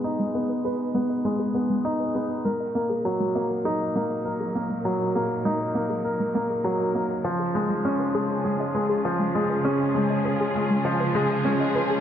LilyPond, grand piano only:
\new Staff \with { instrumentName = "Grand piano" } { \time 4/4 \key dis \minor \tempo 4 = 100 dis'8 b8 b'8 b8 gis8 b8 dis'8 b8 | ais'8 ais8 fis8 ais8 dis'8 ais8 ais'8 ais8 | fis8 ais8 dis'8 ais8 ais'8 ais8 fis8 ais8 | eis8 gis8 cis'8 gis8 gis'8 gis8 eis8 gis8 |
cis'8 gis8 gis'8 gis8 eis8 gis8 cis'8 gis8 | }